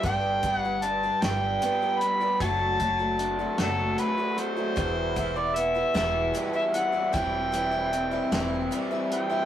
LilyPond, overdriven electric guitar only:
\new Staff \with { instrumentName = "Overdriven electric guitar" } { \clef bass \time 6/8 \key g \major \tempo 4. = 51 g,8 g8 d'8 g8 b8 g8 | fis8 fis8 d'8 fis8 a8 fis8 | e,8 e8 b8 e8 g8 e8 | e8 e8 c'8 e8 g8 e8 | }